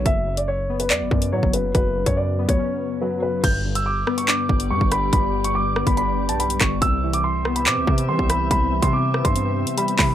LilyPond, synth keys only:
\new Staff \with { instrumentName = "Synth keys" } { \clef bass \time 4/4 \key g \lydian \tempo 4 = 142 fis,8 cis4 b4. fis8 cis8 | fis,8 cis4 b8 cis'4 fis8 cis8 | g,8 d4 b8 d'4 g8 d8 | g,8 d4 b8 d'4 g8 d8 |
c8 e4 b8 c'4 g8 e8 | c8 e4 b8 c'4 g8 e8 | }